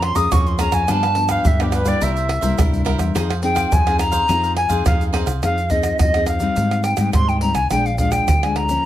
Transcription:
Already playing: F2 F3 A#3 C#4 G#4
0.02 C6, muted cavaquinho stroke, pandeiro, tamborim
0.15 F2 A#3 C#4 G#4 C#5 F5 A#5 D#6, pandeiro, shaker, surdo
0.31 F2 F3 G#4 C#5 F5 A#5 C#6, pandeiro, tamborim, shaker, surdo
0.47 C6, pandeiro, shaker
0.58 A#3 C#4 G#4 C#5 F5 A#5, pandeiro, tamborim, shaker
0.72 F2 C#5 F5 G#5 A#5, pandeiro, tamborim, shaker, surdo
0.88 G2 F3 B3 D4 G4 B4 F5 A5, pandeiro, tamborim, shaker, surdo
1.03 G4 B4 F5, pandeiro, tamborim, shaker
1.15 F3 B3 D4, muted cavaquinho stroke, pandeiro
1.29 G4 B4 F5, pandeiro, tamborim, shaker, surdo
1.45 G2 D3 E5, pandeiro, shaker, surdo
1.60 F3 B3 D4 G4 B4 F5, pandeiro, tamborim, shaker
1.72 D4 G4 B4 F5, pandeiro, tamborim, shaker
1.85 G3 A#3 E4 G4 B4 D5 F5, pandeiro, shaker, surdo
2.01 C2 C3 E4 A#4 C5 E5, pandeiro, shaker, surdo
2.16 A#4 C5 E5, pandeiro, shaker
2.29 muted cavaquinho stroke, pandeiro, tamborim
2.41 C2 G3 A#3 E4 A#4 C5 E5, pandeiro, shaker, surdo
2.58 C2 G2 E4 A#4 C5 E5, pandeiro, tamborim, shaker, surdo
2.74 pandeiro, shaker
2.85 G3 A#3 E4 A#4 C5 E5, pandeiro, tamborim
2.98 E2 A#4 C5 E5, pandeiro, tamborim, shaker, surdo
3.15 F2 F3 C4 D#4 G#4 C5 F5, pandeiro, tamborim, shaker, surdo
3.30 G#4 C5 F5, pandeiro, tamborim, shaker
3.42 C4 D#4 G#4 G5, muted cavaquinho stroke, pandeiro
3.55 G#4 C5 F5, pandeiro, tamborim, shaker, surdo
3.72 F2 G#5, pandeiro, shaker, surdo
3.86 C4 D#4 G#4 C5 F5, pandeiro, tamborim, shaker
3.98 D#4 G#4 C5 F5 A#5, pandeiro, tamborim, shaker
4.12 G#4 C5 F5, pandeiro, shaker, surdo
4.28 F2 F3 C4 D#4 G#4 C5 F5, pandeiro, shaker, surdo
4.43 G#4 C5 F5, pandeiro, shaker
4.56 G#5, muted cavaquinho stroke, pandeiro, tamborim
4.69 F2 C4 D#4 G#4 C5 F5, pandeiro, shaker, surdo
4.85 F2 C3 D#4 G#4 C5 F5, pandeiro, tamborim, shaker, surdo
5.01 pandeiro, shaker
5.13 C4 D#4 G#4 C5 F5, pandeiro, tamborim
5.26 C2 G#4 C5 F5, pandeiro, tamborim, shaker, surdo
5.43 F2 F3 C4 D#4 G#4 F5, pandeiro, tamborim, shaker, surdo
5.58 pandeiro, shaker
5.70 C4 D#4 G#4 D#5, pandeiro, shaker, surdo
5.83 pandeiro, tamborim, shaker
5.99 F2 C3 D#5, pandeiro, tamborim, shaker, surdo
6.14 C4 D#4 G#4, pandeiro, tamborim, shaker
6.26 F5, pandeiro, tamborim, shaker
6.40 G3 C4 D#4, pandeiro, shaker
6.56 G#2, pandeiro, shaker, surdo
6.71 pandeiro, tamborim, shaker
6.84 G5, pandeiro, tamborim, shaker
6.97 G#2 G3 C4 D#4, pandeiro, tamborim, shaker
7.13 G#2 D#3 C6, pandeiro, tamborim, shaker, surdo
7.28 G5, pandeiro, shaker
7.41 G3 C4 D#4 A#5, pandeiro
7.55 C2 G#5, pandeiro, tamborim, shaker
7.71 A#1 A#2 F3 G#3 D4 G5, pandeiro, tamborim, shaker, surdo
7.86 F5, pandeiro, shaker
7.98 F3 G#3 D4 F5, pandeiro, shaker, surdo
8.11 G5, pandeiro, tamborim, shaker
8.28 D2 F2, pandeiro, tamborim, shaker, surdo
8.43 F3 G#3 D4 G#5, pandeiro, tamborim, shaker
8.56 A#5, pandeiro, tamborim
8.69 F3 A#3 C#4, pandeiro, shaker

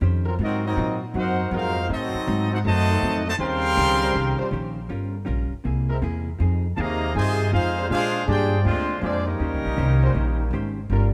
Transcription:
0.01 F2 D#3 C#4 G4 C5
0.25 F#3 C4 F4 A#4
0.39 G#2 F#3 C4 D#4 F4
0.43 C4 F#4 A#4 D#5
0.65 F#3 C4 D#4 F#4 A#4 D#5
0.76 G#2 A#2 F#3 C4 F4
1.14 F#2 G#2 F#3 C4 D#4 F4 F#4
1.19 D#4 A#4 C5 F#5
1.51 F2 G#2 F#3 G#3 C4 D#4 F4 F#4 A#4
1.55 D#4 A#4 C5 F5
1.89 A2 F#3 C4 D#4
1.93 C4 F#4 A4 D#5
2.14 muted upright bass stroke
2.27 G#2 A2 F#3 C4 D#4
2.52 C4 D#4 F#4 A4 C5 F#5
2.64 F#2 A2 D#3 F#3 A3 C4 D#4 F#4 C5 D#5 A5
2.90 F#3 C4 D#4 A4
3.02 F2 A2 F#3 C4 D#4
3.26 D#3 F#3 A3 F#4 C5 D#5
3.30 A5
3.38 D#2 C#3 D#3 G3 C4 C#4 G4 A#4 C5 F5 G5 C6
3.77 C#2 D#3 C#4 G4 C5
4.03 G3 C#4 F4 C5
4.13 C2 D#3 C#4 G4 C5
4.39 G3 C#4 F4 C5, muted upright bass stroke
4.51 A#1 D#3 C#4 G4 C5
4.89 G1 G3 C#4 F4 A#4
5.25 A#1 G3 C#4 F4 A#4
5.52 muted upright bass stroke
5.64 C2 C3 A#3 E4 G#4
5.90 G#3 C4 E4 A#4
6.02 E2 C3 A#3 E4 G#4
6.39 F2 F3 C4 D#4 G#4
6.76 D#2 C3 D#3 F3 A#3 C4 D#4 G#4 A5
6.80 G#4 D#5 F5 A#5
7.14 G2 C3 D#3 F3 C4 D#4 F4 G#4 C5 D#5 G#5
7.51 F2 F3 G#3 C4 D#4 F4 G#4 C5 F5
7.78 G#3 D4 G4 C5
7.89 A#2 G#3 D4 F4 G4 G#4 C5 F5
8.26 G2 A#2 G#3 D4 G4 G#4
8.30 F4 C5 D5 G5
8.61 D2 A#2 F3 G#3 C4
8.66 G#3 D4 F4 G4 C5
9.00 F2 A#2 F3 G#3 C4 D4 F4 G#4 D5
9.04 G#3 D4 G4 C5
9.26 G3 A#3 C#4 D#4 G4 A#4 D#5
9.40 D#2 D#3 C#4 G4 C5
9.53 C#2
9.65 A#1
9.77 C2 D#3 C#4 G4 C5
10.03 G3 C#4 F4 C5
10.14 A#1 D#3 C#4 G4 C5
10.51 G#1 D#3 C#4 G4 C5
10.90 G1 G3 C#4 F4 A#4

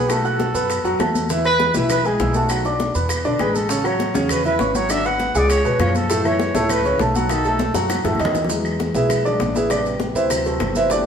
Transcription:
Already playing: B1 G#4
0.09 A3 F#4 A4 A5, high bongo, high conga, claves, maracas
0.24 F#4 A4 F#5 F#6, high bongo, high conga, maracas
0.40 high bongo, high conga, maracas
0.54 F#2 B3 B4 B5, high conga, maracas
0.70 high bongo, high conga, claves, maracas
0.84 F#2 F#3 F#4 F#5, high bongo, high conga, maracas
0.99 E2 A3 A4 A5, high bongo, low bongo, high conga, claves, maracas
1.15 high bongo, high conga, maracas
1.30 E3 E4 E5, high bongo, high conga, maracas
1.44 B3 B4 B5, high conga, claves, maracas
1.60 high bongo, high conga, maracas
1.74 B1 E3 E4 E5, high bongo, high conga, maracas
1.90 B4, high bongo, high conga, low conga, claves, maracas
2.05 G#3 G#4 G#5, high bongo, high conga, maracas
2.19 B1 E4 E5 E6, high bongo, low bongo, high conga, maracas
2.34 A3 F#4 A4 A5, high bongo, high conga, maracas
2.49 F#3 F#4 F#5, high bongo, high conga, claves, maracas
2.65 D4 D5 D6, high bongo, high conga, maracas
2.80 high bongo, high conga, maracas
2.95 E2 B3 B4 B5, high conga, maracas
3.09 high bongo, high conga, claves, maracas
3.24 B1 D3 D4 D5, high bongo, high conga, maracas
3.39 A1 G#3 G#4 B4 G#5, high bongo, low bongo, high conga, claves, maracas
3.55 A4, high bongo, high conga, maracas
3.69 C#3 C#4 C#5, high bongo, high conga, maracas
3.84 F#3 F#4 C#5 F#5, high conga, claves, maracas
4.00 high bongo, high conga, maracas
4.14 E2 C#3 C#4 C#5, high bongo, high conga, maracas
4.29 B4, high bongo, high conga, low conga, claves, maracas
4.44 E3 E4 B4 E5, high bongo, high conga, maracas
4.59 G#1 C#4 C#5 C#6, high bongo, low bongo, high conga, maracas
4.74 F#3 F#4 C#5 F#5, high bongo, high conga, maracas
4.89 D3 D4 D5 E5, high bongo, high conga, claves, maracas
5.04 B3 B4 F#5 B5, high bongo, high conga, maracas
5.20 high bongo, high conga, maracas
5.35 C#2 G#3 G#4 D5 G#5, high conga, maracas
5.50 C#5, high bongo, high conga, claves, maracas
5.65 F2 B2 B3 B4, high bongo, high conga, maracas
5.79 F#2 F3 F4 C#5 F5, high bongo, low bongo, high conga, claves, maracas
5.95 A4, high bongo, high conga, maracas
6.10 A2 A3 A4, high bongo, maracas
6.24 E3 E4 C#5 E5, high conga, claves, maracas
6.39 high bongo, high conga, maracas
6.54 C#2 A2 A3 A4, high bongo, high conga, maracas
6.70 B4, high bongo, high conga, low conga, claves, maracas
6.85 C#3 C#4 C#5, high bongo, high conga, low conga, maracas
6.99 B1 A3 A4 A5, high bongo, low bongo, high conga, maracas
7.15 F#3 F#4 A4 F#5, high bongo, high conga, maracas
7.29 D#3 D#4 D#5, high bongo, high conga, claves, maracas
7.45 A3 A4 A5, high bongo, high conga, maracas
7.59 high bongo, high conga, maracas
7.74 F#2 F#3 F#4 F#5, high bongo, high conga, maracas
7.90 low bongo, claves, maracas
7.94 high conga
8.04 F#2 A2 A3 A4, low bongo, low conga, maracas
8.15 low conga
8.20 E2 D#3 D#4 D#5, low bongo, claves, maracas
8.25 low conga
8.35 low bongo, low conga, maracas
8.44 E3, low conga
8.49 F#3 G#3, high bongo, high conga, maracas
8.65 high conga, claves, maracas
8.80 high bongo, high conga, maracas
8.94 B1 E4 G#4 B4 E5, high bongo, high conga, maracas
9.09 high bongo, high conga, low conga, claves, maracas
9.25 D#3 F#3 G#3 D4 D5, high bongo, high conga, maracas
9.40 A1, high bongo, low bongo, high conga, maracas
9.55 E4 G#4 B4 E5, high bongo, high conga, maracas
9.70 C3 G3 B3 D4 D5, high bongo, claves, maracas
9.85 high bongo, high conga, maracas
10.00 high bongo, high conga, maracas
10.15 D2 E4 B4 C5 E5, high conga, maracas
10.30 C3 E3 F#3 B4, high bongo, high conga, claves, maracas
10.45 C4 F#4 A4 C5, high bongo, high conga, maracas
10.60 G1, high bongo, low bongo, high conga, claves, maracas
10.75 E4 B4 C5 E5, high bongo, high conga, maracas
10.90 E3 A3 B3 D4 G4 B4 D5, high bongo, high conga, maracas

